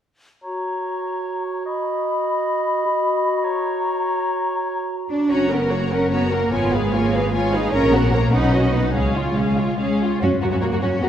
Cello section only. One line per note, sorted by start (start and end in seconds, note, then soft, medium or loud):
5.09 5.29 D4 soft
5.30 5.51 C#4 medium
5.50 5.71 B3 soft
5.71 5.92 A#3 soft
5.92 6.12 C#4 medium
6.13 6.33 B3 soft
6.33 6.53 A#3 medium
6.53 6.73 B3 medium
6.73 6.93 G#3 medium
6.93 7.32 A#3 medium
7.33 7.52 G#3 medium
7.53 7.73 D#4 medium
7.72 7.93 C#4 medium
7.92 8.12 B3 medium
8.12 8.32 A#3 medium
8.33 8.73 C#4 medium
8.73 8.94 B3 soft
8.94 9.98 G#3 medium
10.22 10.30 C#4 medium
10.42 10.62 B3 soft
10.62 10.82 A#3 medium
10.82 11.02 C#4 medium
11.02 11.09 B3 medium